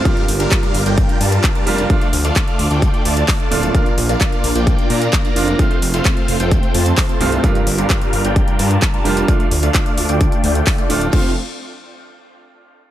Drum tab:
CC |----------------|----------------|----------------|----------------|
HH |xxoxxxoxxxoxxxox|xxoxxxoxxxoxoxox|xxoxxxoxxxoxxxox|xxoxxxoxxxoxoxox|
CP |----x-------x---|----x-------x---|----x-------x---|----x-------x---|
BD |o---o---o---o---|o---o---o---o---|o---o---o---o---|o---o---o---o---|

CC |----------------|----------------|x---------------|
HH |xxoxxxoxxxoxxxox|xxoxxxoxxxoxoxox|----------------|
CP |----x-------x---|----x-------x---|----------------|
BD |o---o---o---o---|o---o---o---o---|o---------------|